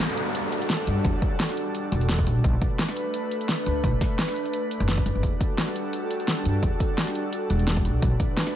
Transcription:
Already playing: analog synth pad G3 D4 F#4 A4, downlifter
0.00 snare, closed hi-hat
0.09 snare
0.17 closed hi-hat
0.35 closed hi-hat
0.52 closed hi-hat
0.62 closed hi-hat
0.70 snare, closed hi-hat
0.87 upright bass G2, closed hi-hat
1.05 upright bass E2, kick, closed hi-hat
1.22 kick, closed hi-hat
1.40 snare, closed hi-hat
1.49 snare
1.57 open hi-hat
1.75 closed hi-hat
1.92 upright bass E1, closed hi-hat
2.01 closed hi-hat
2.09 snare, closed hi-hat
2.19 kick
2.27 upright bass B1, closed hi-hat
2.44 upright bass B1, analog synth pad A3 D4 B4, kick, closed hi-hat
2.62 kick, closed hi-hat
2.79 snare, closed hi-hat
2.89 snare
2.97 closed hi-hat
3.14 closed hi-hat
3.31 closed hi-hat
3.41 closed hi-hat
3.49 snare, closed hi-hat
3.66 upright bass D2, closed hi-hat
3.84 upright bass B1, kick, closed hi-hat
4.01 kick, snare, closed hi-hat
4.19 snare, closed hi-hat
4.28 snare
4.36 open hi-hat
4.46 closed hi-hat
4.54 closed hi-hat
4.71 closed hi-hat
4.80 upright bass F#1, closed hi-hat
4.88 snare, closed hi-hat
4.98 kick
5.06 upright bass F#1, closed hi-hat
5.15 upright bass F#1
5.23 upright bass E2, analog synth pad G3 F#4 A4, kick, closed hi-hat
5.41 kick, closed hi-hat
5.58 snare, closed hi-hat
5.68 snare
5.76 closed hi-hat
5.93 closed hi-hat
6.11 closed hi-hat
6.20 closed hi-hat
6.28 snare, closed hi-hat
6.45 upright bass G2, closed hi-hat
6.63 upright bass E2, kick, closed hi-hat
6.80 kick, closed hi-hat
6.98 snare, closed hi-hat
7.07 snare
7.15 open hi-hat
7.33 closed hi-hat
7.50 upright bass E1, closed hi-hat
7.59 closed hi-hat
7.67 snare, closed hi-hat
7.77 kick
7.85 upright bass B1, closed hi-hat
8.02 upright bass B1, analog synth pad A3 B4, kick, closed hi-hat
8.20 kick, closed hi-hat
8.37 snare, closed hi-hat
8.47 snare

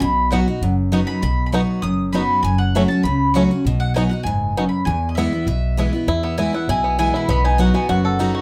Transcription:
0.00 upright bass B1, steel-string acoustic guitar B2, mandolin B5
0.31 steel-string acoustic guitar F#3 B3 D#4 F#4, five-string banjo B3 D#4 F#4, mandolin F#5
0.48 steel-string acoustic guitar D#4 F#4
0.61 upright bass F#1, steel-string acoustic guitar F#2
0.92 steel-string acoustic guitar F#3 B3 D#4 F#4, five-string banjo B3 D#4 F#4
1.07 mandolin B5
1.22 upright bass B1, steel-string acoustic guitar B2, mandolin B5
1.46 mandolin B5
1.52 steel-string acoustic guitar F#3 B3 D#4 F#4, five-string banjo B3 D#4 F#4, mandolin C#6
1.82 upright bass F#1, steel-string acoustic guitar F#2, mandolin D#6
2.13 steel-string acoustic guitar F#3 B3 D#4 F#4, five-string banjo B3 D#4 F#4, mandolin B5
2.43 upright bass F#1, steel-string acoustic guitar F#2, mandolin G#5
2.58 mandolin F#5
2.75 steel-string acoustic guitar F#3 A3 C#4 F#4, five-string banjo A3 C#4 F#4
2.88 steel-string acoustic guitar C#4 F#4, mandolin A5
3.03 upright bass C#2, steel-string acoustic guitar C#3, mandolin B5
3.34 steel-string acoustic guitar F#3 A3 C#4 F#4, five-string banjo A3 C#4 F#4, mandolin C#6
3.51 steel-string acoustic guitar C#4 F#4
3.65 upright bass B1, steel-string acoustic guitar B2
3.80 mandolin F#5
3.94 steel-string acoustic guitar F#3 B3 D#4 F#4, five-string banjo B3 D#4 F#4, mandolin G#5
4.09 steel-string acoustic guitar D#4 F#4, mandolin F#5
4.23 upright bass F#1, steel-string acoustic guitar G#2, mandolin G#5
4.57 steel-string acoustic guitar F#2, five-string banjo B3 D#4 F#4
4.69 mandolin B5
4.85 upright bass E2, steel-string acoustic guitar E2, mandolin G#5
5.09 mandolin D#5
5.15 steel-string acoustic guitar E3 G#3 B3 E4, five-string banjo B3 E4, mandolin E5
5.33 steel-string acoustic guitar B3 E4
5.46 upright bass B1, steel-string acoustic guitar B2, mandolin E5
5.77 steel-string acoustic guitar E3 G#3 B3 E4, five-string banjo B3 E4
5.93 steel-string acoustic guitar B3 E4
6.07 upright bass E2, steel-string acoustic guitar E2, five-string banjo E4
6.23 five-string banjo B3, mandolin E5
6.38 steel-string acoustic guitar E3 G#3 B3 E4, five-string banjo E4, mandolin G#5
6.53 steel-string acoustic guitar B3 E4, five-string banjo E4, mandolin F#5
6.68 upright bass B1, steel-string acoustic guitar B2, five-string banjo E4, mandolin G#5
6.84 five-string banjo B3
6.99 steel-string acoustic guitar E3 G#3 B3 E4, five-string banjo E4, mandolin G#5
7.14 five-string banjo E4, mandolin B5
7.29 upright bass B1, steel-string acoustic guitar B2, five-string banjo B3, mandolin B5
7.44 five-string banjo D#4, mandolin G#5
7.58 steel-string acoustic guitar F#3 B3 D#4 F#4, five-string banjo F#4, mandolin F#5
7.74 five-string banjo B3, steel-string acoustic guitar D#4 F#4, mandolin G#5
7.89 upright bass F#1, steel-string acoustic guitar F#2, five-string banjo F#4, mandolin F#5
8.05 five-string banjo A4
8.19 steel-string acoustic guitar F#3 B3 D#4 F#4, five-string banjo D#4
8.35 five-string banjo F#4

